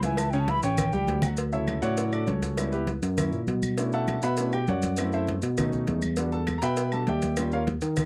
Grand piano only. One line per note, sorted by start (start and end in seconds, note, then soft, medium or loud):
0.03 0.28 E3 medium
0.03 0.28 E4 medium
0.03 0.28 E5 medium
0.33 0.45 C#3 medium
0.33 0.45 C#4 medium
0.33 0.46 C#5 medium
0.48 0.60 E3 medium
0.48 0.61 E4 medium
0.48 0.61 E5 medium
0.63 0.88 C#4 medium
0.63 0.88 C#5 medium
0.63 0.88 C#6 medium
0.93 1.17 G3 medium
0.93 1.18 G4 medium
0.93 1.18 G5 medium
1.22 1.35 F#3 medium
1.22 1.35 F#4 medium
1.22 1.35 F#5 medium
1.52 2.54 C#3 soft
1.52 1.95 F#3 medium
1.52 1.96 E4 medium
1.52 1.81 A4 medium
1.52 1.81 C#5 medium
1.52 1.81 E5 medium
1.82 2.11 F#4 medium
1.82 2.11 C#5 medium
1.82 2.11 D5 medium
1.82 2.10 F#5 loud
1.97 2.11 F#3 medium
1.97 2.11 C#4 soft
1.97 2.11 E4 medium
2.13 2.27 D4 medium
2.13 2.26 F#4 medium
2.13 2.26 A4 medium
2.13 2.27 D5 medium
2.27 2.69 C#4 medium
2.27 2.70 F#4 medium
2.27 2.69 A4 medium
2.27 2.69 C#5 medium
2.57 2.77 G3 medium
2.57 2.71 B3 soft
2.57 2.71 E4 medium
2.72 2.87 B3 medium
2.72 2.87 E4 medium
2.72 2.88 G4 medium
2.72 2.87 B4 medium
3.17 3.37 A#3 medium
3.17 3.38 C#4 medium
3.17 3.38 E4 medium
3.78 4.21 A3 medium
3.78 4.21 C#4 medium
3.78 4.21 D4 medium
3.78 4.21 E4 medium
3.93 4.21 A4 medium
3.93 4.21 E5 medium
3.93 4.21 F#5 medium
3.93 4.21 A5 medium
4.23 4.51 B4 medium
4.23 4.51 E5 medium
4.23 4.51 F#5 medium
4.23 4.51 B5 loud
4.38 4.52 A3 medium
4.38 4.52 C#4 soft
4.38 4.52 D4 soft
4.38 4.52 E4 medium
4.53 4.68 G4 medium
4.53 4.68 G5 medium
4.69 5.10 F#4 medium
4.69 4.96 C#5 medium
4.69 5.10 D5 medium
4.69 5.10 F#5 medium
4.98 5.41 A3 medium
4.98 5.41 C4 medium
4.98 5.12 E4 medium
5.13 5.28 E4 medium
5.13 5.28 A4 medium
5.13 5.28 C5 medium
5.13 5.28 E5 medium
5.58 6.00 A3 medium
5.58 6.01 C#4 medium
5.58 6.01 D#4 medium
6.17 6.37 G3 medium
6.17 6.38 D4 medium
6.17 6.38 F#4 medium
6.32 6.61 A4 medium
6.32 6.60 A5 medium
6.58 6.60 A#5 medium
6.62 6.91 B4 medium
6.62 6.91 E5 medium
6.62 6.91 G5 medium
6.62 6.90 B5 loud
6.92 7.06 G3 soft
6.92 7.06 D4 soft
6.92 7.06 F#4 medium
6.92 7.07 A4 medium
6.92 7.07 A5 medium
7.08 7.50 G4 medium
7.08 7.36 D5 medium
7.08 7.36 E5 medium
7.08 7.50 G5 medium
7.37 7.57 G3 medium
7.37 7.58 C#4 medium
7.37 7.52 F4 medium
7.53 7.62 F4 medium
7.53 7.62 A#4 medium
7.53 7.62 C#5 medium
7.53 7.62 F5 medium